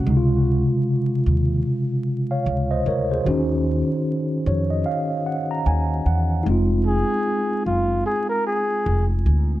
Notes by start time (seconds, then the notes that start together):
Already playing: F#4
0.04 C#2 C#3 G#3
0.08 C3 D#4
0.17 F4
1.26 D#2
2.31 C#5 F5
2.46 C#2
2.71 C5 D#5
2.86 D2 A#4 C#5
3.11 G#4 C5
3.24 D#2 D#3 F#4
3.28 C#4 D#4
4.46 F2 C#5
4.70 D#5
4.86 F5
5.26 F#5
5.51 A#5
5.66 D#2 G#5
6.06 E2 F#5
6.43 F1 G#3 D#4
6.48 C4 F4
6.87 G#4
7.66 F#1 F4
8.06 G#4
8.30 A#4
8.47 G#4
8.86 F1
9.26 D2